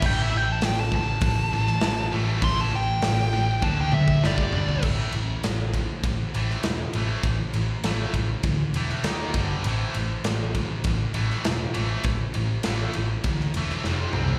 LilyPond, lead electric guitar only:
\new Staff \with { instrumentName = "Lead electric guitar" } { \time 4/4 \key a \minor \tempo 4 = 100 g''16 e''16 g''16 a''16 g''16 a''16 a''2 r8 | c'''16 a''16 g''4. a''16 g''16 e''8 d''4 | r1 | r1 |
r1 | r1 | }